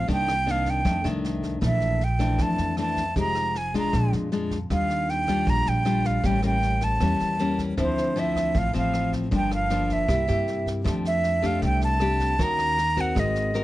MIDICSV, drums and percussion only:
0, 0, Header, 1, 2, 480
1, 0, Start_track
1, 0, Tempo, 384615
1, 102, Time_signature, 4, 2, 24, 8
1, 17021, End_track
2, 0, Start_track
2, 0, Title_t, "Drums"
2, 107, Note_on_c, 9, 36, 53
2, 116, Note_on_c, 9, 38, 23
2, 232, Note_off_c, 9, 36, 0
2, 240, Note_off_c, 9, 38, 0
2, 353, Note_on_c, 9, 37, 55
2, 353, Note_on_c, 9, 38, 23
2, 478, Note_off_c, 9, 37, 0
2, 478, Note_off_c, 9, 38, 0
2, 595, Note_on_c, 9, 38, 21
2, 719, Note_off_c, 9, 38, 0
2, 821, Note_on_c, 9, 36, 23
2, 822, Note_on_c, 9, 38, 22
2, 946, Note_off_c, 9, 36, 0
2, 947, Note_off_c, 9, 38, 0
2, 1062, Note_on_c, 9, 36, 55
2, 1063, Note_on_c, 9, 37, 55
2, 1063, Note_on_c, 9, 38, 22
2, 1187, Note_off_c, 9, 36, 0
2, 1188, Note_off_c, 9, 37, 0
2, 1188, Note_off_c, 9, 38, 0
2, 1306, Note_on_c, 9, 38, 24
2, 1431, Note_off_c, 9, 38, 0
2, 1552, Note_on_c, 9, 38, 22
2, 1677, Note_off_c, 9, 38, 0
2, 1783, Note_on_c, 9, 36, 19
2, 1788, Note_on_c, 9, 38, 22
2, 1908, Note_off_c, 9, 36, 0
2, 1913, Note_off_c, 9, 38, 0
2, 2021, Note_on_c, 9, 36, 57
2, 2027, Note_on_c, 9, 37, 56
2, 2027, Note_on_c, 9, 38, 24
2, 2146, Note_off_c, 9, 36, 0
2, 2151, Note_off_c, 9, 37, 0
2, 2151, Note_off_c, 9, 38, 0
2, 2263, Note_on_c, 9, 38, 22
2, 2388, Note_off_c, 9, 38, 0
2, 2508, Note_on_c, 9, 38, 22
2, 2633, Note_off_c, 9, 38, 0
2, 2741, Note_on_c, 9, 36, 21
2, 2744, Note_on_c, 9, 37, 54
2, 2744, Note_on_c, 9, 38, 20
2, 2865, Note_off_c, 9, 36, 0
2, 2869, Note_off_c, 9, 37, 0
2, 2869, Note_off_c, 9, 38, 0
2, 2972, Note_on_c, 9, 38, 25
2, 2978, Note_on_c, 9, 36, 53
2, 3096, Note_off_c, 9, 38, 0
2, 3103, Note_off_c, 9, 36, 0
2, 3217, Note_on_c, 9, 38, 24
2, 3342, Note_off_c, 9, 38, 0
2, 3455, Note_on_c, 9, 37, 47
2, 3455, Note_on_c, 9, 38, 20
2, 3580, Note_off_c, 9, 37, 0
2, 3580, Note_off_c, 9, 38, 0
2, 3701, Note_on_c, 9, 36, 21
2, 3703, Note_on_c, 9, 38, 21
2, 3826, Note_off_c, 9, 36, 0
2, 3828, Note_off_c, 9, 38, 0
2, 3941, Note_on_c, 9, 38, 22
2, 3943, Note_on_c, 9, 36, 56
2, 4066, Note_off_c, 9, 38, 0
2, 4068, Note_off_c, 9, 36, 0
2, 4182, Note_on_c, 9, 37, 57
2, 4182, Note_on_c, 9, 38, 21
2, 4307, Note_off_c, 9, 37, 0
2, 4307, Note_off_c, 9, 38, 0
2, 4430, Note_on_c, 9, 38, 21
2, 4555, Note_off_c, 9, 38, 0
2, 4667, Note_on_c, 9, 36, 20
2, 4671, Note_on_c, 9, 38, 20
2, 4792, Note_off_c, 9, 36, 0
2, 4796, Note_off_c, 9, 38, 0
2, 4908, Note_on_c, 9, 36, 52
2, 4908, Note_on_c, 9, 37, 55
2, 4908, Note_on_c, 9, 38, 22
2, 5033, Note_off_c, 9, 36, 0
2, 5033, Note_off_c, 9, 37, 0
2, 5033, Note_off_c, 9, 38, 0
2, 5153, Note_on_c, 9, 38, 24
2, 5278, Note_off_c, 9, 38, 0
2, 5390, Note_on_c, 9, 38, 21
2, 5515, Note_off_c, 9, 38, 0
2, 5629, Note_on_c, 9, 36, 21
2, 5630, Note_on_c, 9, 38, 21
2, 5753, Note_off_c, 9, 36, 0
2, 5755, Note_off_c, 9, 38, 0
2, 5870, Note_on_c, 9, 36, 50
2, 5870, Note_on_c, 9, 37, 53
2, 5870, Note_on_c, 9, 38, 21
2, 5995, Note_off_c, 9, 36, 0
2, 5995, Note_off_c, 9, 37, 0
2, 5995, Note_off_c, 9, 38, 0
2, 6111, Note_on_c, 9, 38, 20
2, 6236, Note_off_c, 9, 38, 0
2, 6358, Note_on_c, 9, 38, 21
2, 6483, Note_off_c, 9, 38, 0
2, 6586, Note_on_c, 9, 37, 57
2, 6586, Note_on_c, 9, 38, 21
2, 6587, Note_on_c, 9, 36, 21
2, 6711, Note_off_c, 9, 36, 0
2, 6711, Note_off_c, 9, 37, 0
2, 6711, Note_off_c, 9, 38, 0
2, 6824, Note_on_c, 9, 38, 21
2, 6825, Note_on_c, 9, 36, 52
2, 6949, Note_off_c, 9, 38, 0
2, 6950, Note_off_c, 9, 36, 0
2, 7067, Note_on_c, 9, 38, 23
2, 7191, Note_off_c, 9, 38, 0
2, 7309, Note_on_c, 9, 37, 47
2, 7309, Note_on_c, 9, 38, 21
2, 7433, Note_off_c, 9, 37, 0
2, 7433, Note_off_c, 9, 38, 0
2, 7544, Note_on_c, 9, 36, 21
2, 7545, Note_on_c, 9, 38, 22
2, 7669, Note_off_c, 9, 36, 0
2, 7670, Note_off_c, 9, 38, 0
2, 7783, Note_on_c, 9, 36, 52
2, 7785, Note_on_c, 9, 38, 23
2, 7908, Note_off_c, 9, 36, 0
2, 7909, Note_off_c, 9, 38, 0
2, 8016, Note_on_c, 9, 37, 50
2, 8016, Note_on_c, 9, 38, 22
2, 8141, Note_off_c, 9, 37, 0
2, 8141, Note_off_c, 9, 38, 0
2, 8268, Note_on_c, 9, 38, 22
2, 8392, Note_off_c, 9, 38, 0
2, 8498, Note_on_c, 9, 38, 22
2, 8501, Note_on_c, 9, 36, 23
2, 8623, Note_off_c, 9, 38, 0
2, 8626, Note_off_c, 9, 36, 0
2, 8739, Note_on_c, 9, 37, 52
2, 8739, Note_on_c, 9, 38, 23
2, 8743, Note_on_c, 9, 36, 51
2, 8864, Note_off_c, 9, 37, 0
2, 8864, Note_off_c, 9, 38, 0
2, 8868, Note_off_c, 9, 36, 0
2, 8982, Note_on_c, 9, 38, 22
2, 9107, Note_off_c, 9, 38, 0
2, 9223, Note_on_c, 9, 38, 19
2, 9348, Note_off_c, 9, 38, 0
2, 9465, Note_on_c, 9, 36, 21
2, 9467, Note_on_c, 9, 38, 21
2, 9590, Note_off_c, 9, 36, 0
2, 9592, Note_off_c, 9, 38, 0
2, 9706, Note_on_c, 9, 36, 55
2, 9706, Note_on_c, 9, 37, 60
2, 9706, Note_on_c, 9, 38, 24
2, 9831, Note_off_c, 9, 36, 0
2, 9831, Note_off_c, 9, 37, 0
2, 9831, Note_off_c, 9, 38, 0
2, 9954, Note_on_c, 9, 38, 22
2, 10079, Note_off_c, 9, 38, 0
2, 10193, Note_on_c, 9, 38, 24
2, 10317, Note_off_c, 9, 38, 0
2, 10429, Note_on_c, 9, 36, 21
2, 10438, Note_on_c, 9, 37, 53
2, 10438, Note_on_c, 9, 38, 22
2, 10554, Note_off_c, 9, 36, 0
2, 10562, Note_off_c, 9, 37, 0
2, 10562, Note_off_c, 9, 38, 0
2, 10664, Note_on_c, 9, 38, 22
2, 10667, Note_on_c, 9, 36, 55
2, 10788, Note_off_c, 9, 38, 0
2, 10792, Note_off_c, 9, 36, 0
2, 10908, Note_on_c, 9, 38, 21
2, 11033, Note_off_c, 9, 38, 0
2, 11151, Note_on_c, 9, 37, 55
2, 11151, Note_on_c, 9, 38, 21
2, 11276, Note_off_c, 9, 37, 0
2, 11276, Note_off_c, 9, 38, 0
2, 11388, Note_on_c, 9, 36, 22
2, 11390, Note_on_c, 9, 38, 21
2, 11513, Note_off_c, 9, 36, 0
2, 11515, Note_off_c, 9, 38, 0
2, 11630, Note_on_c, 9, 36, 59
2, 11634, Note_on_c, 9, 38, 21
2, 11755, Note_off_c, 9, 36, 0
2, 11759, Note_off_c, 9, 38, 0
2, 11871, Note_on_c, 9, 37, 52
2, 11871, Note_on_c, 9, 38, 22
2, 11996, Note_off_c, 9, 37, 0
2, 11996, Note_off_c, 9, 38, 0
2, 12103, Note_on_c, 9, 38, 23
2, 12227, Note_off_c, 9, 38, 0
2, 12348, Note_on_c, 9, 36, 21
2, 12351, Note_on_c, 9, 38, 21
2, 12473, Note_off_c, 9, 36, 0
2, 12476, Note_off_c, 9, 38, 0
2, 12587, Note_on_c, 9, 36, 61
2, 12589, Note_on_c, 9, 37, 58
2, 12589, Note_on_c, 9, 38, 23
2, 12712, Note_off_c, 9, 36, 0
2, 12714, Note_off_c, 9, 37, 0
2, 12714, Note_off_c, 9, 38, 0
2, 12834, Note_on_c, 9, 38, 24
2, 12959, Note_off_c, 9, 38, 0
2, 13073, Note_on_c, 9, 38, 20
2, 13197, Note_off_c, 9, 38, 0
2, 13308, Note_on_c, 9, 36, 20
2, 13316, Note_on_c, 9, 38, 21
2, 13433, Note_off_c, 9, 36, 0
2, 13440, Note_off_c, 9, 38, 0
2, 13548, Note_on_c, 9, 36, 60
2, 13555, Note_on_c, 9, 37, 57
2, 13555, Note_on_c, 9, 38, 24
2, 13673, Note_off_c, 9, 36, 0
2, 13679, Note_off_c, 9, 37, 0
2, 13679, Note_off_c, 9, 38, 0
2, 13791, Note_on_c, 9, 38, 22
2, 13916, Note_off_c, 9, 38, 0
2, 14024, Note_on_c, 9, 38, 25
2, 14149, Note_off_c, 9, 38, 0
2, 14267, Note_on_c, 9, 36, 20
2, 14270, Note_on_c, 9, 37, 55
2, 14270, Note_on_c, 9, 38, 23
2, 14391, Note_off_c, 9, 36, 0
2, 14395, Note_off_c, 9, 37, 0
2, 14395, Note_off_c, 9, 38, 0
2, 14503, Note_on_c, 9, 38, 24
2, 14505, Note_on_c, 9, 36, 53
2, 14628, Note_off_c, 9, 38, 0
2, 14630, Note_off_c, 9, 36, 0
2, 14741, Note_on_c, 9, 38, 22
2, 14866, Note_off_c, 9, 38, 0
2, 14975, Note_on_c, 9, 37, 57
2, 14975, Note_on_c, 9, 38, 21
2, 15100, Note_off_c, 9, 37, 0
2, 15100, Note_off_c, 9, 38, 0
2, 15222, Note_on_c, 9, 38, 21
2, 15223, Note_on_c, 9, 36, 24
2, 15346, Note_off_c, 9, 38, 0
2, 15348, Note_off_c, 9, 36, 0
2, 15466, Note_on_c, 9, 36, 58
2, 15468, Note_on_c, 9, 38, 23
2, 15591, Note_off_c, 9, 36, 0
2, 15592, Note_off_c, 9, 38, 0
2, 15706, Note_on_c, 9, 37, 53
2, 15706, Note_on_c, 9, 38, 22
2, 15831, Note_off_c, 9, 37, 0
2, 15831, Note_off_c, 9, 38, 0
2, 15951, Note_on_c, 9, 38, 24
2, 16075, Note_off_c, 9, 38, 0
2, 16186, Note_on_c, 9, 36, 22
2, 16186, Note_on_c, 9, 38, 23
2, 16311, Note_off_c, 9, 36, 0
2, 16311, Note_off_c, 9, 38, 0
2, 16426, Note_on_c, 9, 36, 54
2, 16427, Note_on_c, 9, 37, 53
2, 16427, Note_on_c, 9, 38, 22
2, 16550, Note_off_c, 9, 36, 0
2, 16552, Note_off_c, 9, 37, 0
2, 16552, Note_off_c, 9, 38, 0
2, 16667, Note_on_c, 9, 38, 25
2, 16792, Note_off_c, 9, 38, 0
2, 16908, Note_on_c, 9, 38, 24
2, 17021, Note_off_c, 9, 38, 0
2, 17021, End_track
0, 0, End_of_file